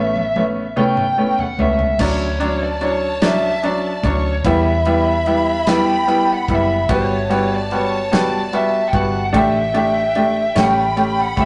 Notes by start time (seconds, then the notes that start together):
Already playing: A1 A3 B3 C#4 E5
0.16 high tom
0.36 A3 B3 C#4, high tom
0.76 A3 B3 C#4 G5, mid tom
0.97 mid tom
1.18 A3 B3 C#4
1.39 F#5, floor tom
1.58 C#2 A3 B3 C#4 E5, floor tom
1.79 floor tom
1.99 D2 F#3 C#4 D4 C#5 A5, kick, crash
2.39 F#3 C#4 D4, ride
2.63 D5
2.81 F#3 C#4 D4 C#5, ride
3.21 F#3 C#4 D4 E5, snare, ride
3.63 F#3 C#4 D4 D5, ride
4.03 D2 F#3 C#4 D4 C#5, kick, ride
4.44 E2 G3 B3 E4 E5 B5, kick, ride
4.85 G3 B3 E4, ride
5.26 G3 B3 E4, ride
5.67 G3 B3 E4 G5, snare, ride
6.07 G3 B3 E4, ride
6.33 F#5
6.48 F#1 G3 B3 E4, kick, ride
6.54 E5
6.89 G1 G3 B3 F#4 A5, kick, ride
6.94 C#5
7.30 G3 B3 F#4, ride
7.55 D5
7.71 G3 B3 F#4, ride
7.75 C#5
8.12 G3 B3 F#4 D5, snare, ride
8.53 G3 B3 F#4 E5, ride
8.88 G5
8.93 G1 G3 B3 F#4 F#5, kick, ride
9.33 A1 A3 D4 G4 G5, kick, ride
9.37 E5
9.74 A3 D4 G4, ride
10.15 A3 D4 G4, ride
10.55 A1 A3 C#4 G4 B5, snare, ride
10.60 G5
10.96 A3 C#4 G4, ride
11.22 F#5
11.37 G1 A3 C#4 G4, kick, ride
11.41 E5